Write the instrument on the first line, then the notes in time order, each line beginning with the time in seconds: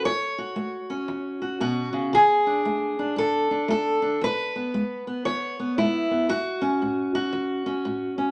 steel-string acoustic guitar
0.05 E2 C#5
0.38 F#4
0.56 A3
0.90 C#4
1.08 E2
1.42 F#4
1.60 B2 F#4
1.93 C#3
2.13 D3 G#4
2.46 D4
2.65 A3
2.99 D4
3.16 A2 A4
3.51 D4
3.68 A3 A4
4.02 D4
4.21 E2 B4
4.56 B3
4.74 G#3
5.07 B3
5.25 E2 C#5
5.60 B3
5.78 G#3 E4
6.11 B3
6.29 E2 F#4
6.62 C#4
6.82 A2
7.15 F#4
7.33 E2
7.66 C#4
7.85 A2
8.18 C#4